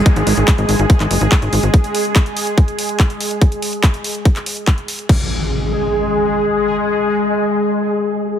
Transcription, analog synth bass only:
X:1
M:4/4
L:1/16
Q:1/4=143
K:F#mix
V:1 name="Analog synth bass" clef=bass
z G,,, G,,, G,,, z G,,, G,,, G,,, z G,,, F,,, G,,, z G,,, G,,, G,,, | z16 | z16 | z16 |
z16 |]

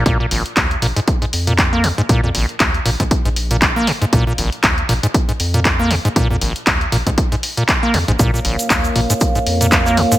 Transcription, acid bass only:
X:1
M:4/4
L:1/16
Q:"Swing 16ths" 1/4=118
K:Bbm
V:1 name="Acid bass" clef=bass
B,, B,, B,,, z3 B,, A,, z A,, z B,, z B, B,, A,, | B,, B,, B,,, z3 B,, A,, z A,, z B,, z B, B,, A,, | B,, B,, B,,, z3 B,, A,, z A,, z B,, z B, B,, A,, | B,, B,, B,,, z3 B,, A,, z A,, z B,, z B, B,, A,, |
B,, B,, B,,, z3 B,, A,, z A,, z B,, z B, B,, A,, |]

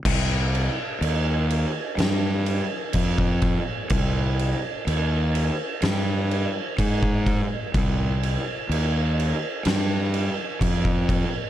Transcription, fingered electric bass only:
X:1
M:4/4
L:1/8
Q:1/4=63
K:Cm
V:1 name="Fingered electric bass" clef=bass
C,,2 E,,2 G,,2 F,,2 | C,,2 E,,2 G,,2 A,,2 | C,,2 E,,2 G,,2 F,,2 |]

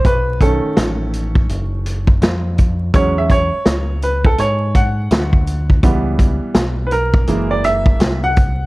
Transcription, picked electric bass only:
X:1
M:4/4
L:1/16
Q:"Swing 16ths" 1/4=83
K:Emix
V:1 name="Picked electric bass" clef=bass
B,,,3 z A,,,4 F,,,4 ^E,,4 | E,,3 z C,,4 G,,4 D,,4 | C,,3 z B,,,4 F,,,4 =C,,4 |]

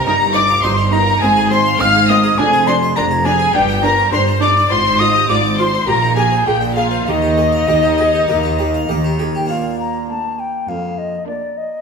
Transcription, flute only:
X:1
M:4/4
L:1/16
Q:1/4=102
K:Eb
V:1 name="Flute"
b2 d'2 c'2 b2 a2 c'2 f'2 e'2 | a2 c'2 b2 a2 g2 b2 c'2 d'2 | c'2 e'2 d'2 c'2 b2 a2 g2 f2 | e12- e2 z g |
[K:Bb] f2 b2 a2 g2 f2 e2 d2 e2 |]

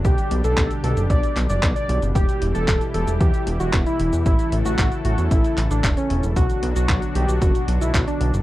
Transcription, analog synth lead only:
X:1
M:4/4
L:1/16
Q:1/4=114
K:Edor
V:1 name="Analog synth lead"
G2 z A2 z A z d2 z d z d2 z | G2 z A2 z A z G2 z F z E2 z | E2 z F2 z F z E2 z D z C2 z | F2 z F2 z G z F2 z E z D2 z |]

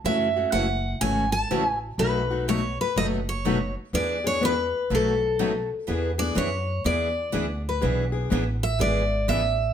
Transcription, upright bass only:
X:1
M:4/4
L:1/8
Q:"Swing" 1/4=123
K:Emix
V:1 name="Upright bass" clef=bass
F,,2 F,,,2 G,,,2 A,,,2 | B,,,4 F,,,4 | E,,4 B,,,4 | E,,2 F,,2 E,,2 D,,2 |
B,,,2 A,,,2 G,,,2 A,,,2 |]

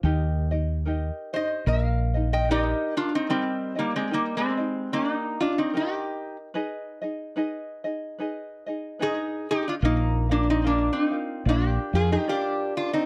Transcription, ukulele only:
X:1
M:4/4
L:1/8
Q:"Swing" 1/4=74
K:Eb
V:1 name="Ukulele"
[EGBe] [EGe] [EGBe] [EGe]2 [EGe] [EGBe]2 | [EGBe] [EGe] [EGBe] [EGe] [EGBe] [EGe] [EGBe]2 | [EA_ce] [EAe] [EAce] [EAe] [EAce] [EAe] [EAce]2 | [FBef] [FBf] [FBef] [FBf] [FBdf] [FBf] [FBdf]2 |]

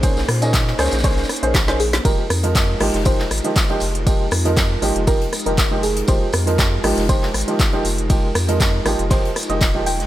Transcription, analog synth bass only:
X:1
M:4/4
L:1/16
Q:"Swing 16ths" 1/4=119
K:Fm
V:1 name="Analog synth bass" clef=bass
B,,, B,,, B,,4 D,, B,,,3 z B,,,4- B,,, | F,,, z F,,4 A,,, F,,,3 A,,, z3 F,,,2- | F,,, F,,, F,,4 A,,, F,,,3 z F,,,4- F,,, | F,,, z F,,4 A,,, F,,,3 A,,, z3 F,,,2- |
F,,, F,,, F,,4 A,,, F,,,3 z F,,, E,,,3 F,,, |]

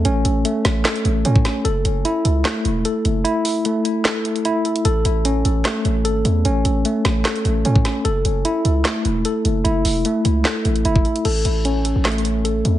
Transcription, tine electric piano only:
X:1
M:4/4
L:1/8
Q:1/4=150
K:A
V:1 name="Tine electric piano"
[A,CA]2 A,2 A2 C2 | A2 E2 A,2 A2 | E2 A,2 A2 E2 | A2 C2 A,2 A2 |
C2 A,2 A2 C2 | A2 E2 A,2 A2 | E2 A,2 A2 E2 | A2 C2 A,2 A2 |]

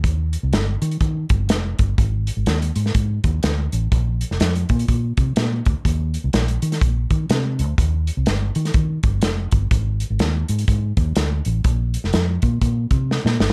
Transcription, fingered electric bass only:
X:1
M:4/4
L:1/16
Q:"Swing" 1/4=124
K:Cm
V:1 name="Fingered electric bass" clef=bass
E,,3 C,, G,,,2 E,2 E,2 G,,,2 F,,,2 G,,,2 | A,,,3 A,,, E,,2 A,,2 A,,2 E,,2 D,,2 =A,,,2 | B,,,3 F,,, F,,2 B,,2 B,,2 C,2 B,,2 D,, z | E,,3 C,, B,,,2 E,2 B,,,2 E,2 C,2 D,,2 |
E,,3 C,, G,,,2 E,2 E,2 G,,,2 F,,,2 G,,,2 | A,,,3 A,,, E,,2 A,,2 A,,2 E,,2 D,,2 =A,,,2 | B,,,3 F,,, F,,2 B,,2 B,,2 C,3 B,, G,,,2 |]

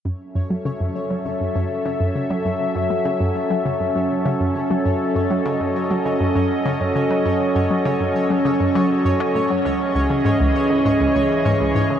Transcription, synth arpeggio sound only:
X:1
M:4/4
L:1/16
Q:1/4=100
K:F#dor
V:1 name="Synth arpeggio sound" clef=bass
F,, z F,, F, C, F,, z F, C, F,, F,, z C, F,, C, F, | F,, z F,, F, C, F,, z F, C, F,, F,, z C, F,, C, F, | F,, z F,, F, C, F,, z F, C, F,, F,, z C, F,, C, F, | F,, z F,, F, C, F,, z F, C, F,, F, z F,, C A,, F, |
C,, z C,, C, G,, C,, z C, G,, C,, C,, z G,, C,, G,, C, |]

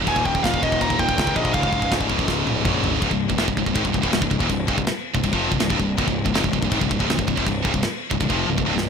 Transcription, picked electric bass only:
X:1
M:4/4
L:1/16
Q:1/4=162
K:Cphr
V:1 name="Picked electric bass" clef=bass
E,,,2 E,,,2 E,,,2 E,,,2 E,,,2 E,,,2 D,,2 B,,,2 | D,,,2 D,,,2 D,,,2 D,,,2 D,,,2 D,,,2 B,,,2 A,,,2 | C,,, C,,,2 C,,, F,,, C,,, C,,, C,,, A,,, C,,, C,,, C,,, C,,, C,,, C,,, E,,, | C,,,2 C,,, C,,, z3 C,,, C,,, F,,,2 C,,, C,,, C,,, C,,,2 |
C,,, C,,,2 C,,, F,,, C,,, C,,, C,,, A,,, C,,, C,,, C,,, C,,, C,,, C,,, E,,, | C,,,2 C,,, C,,, z3 C,,, C,,, F,,,2 C,,, C,,, C,,, C,,,2 |]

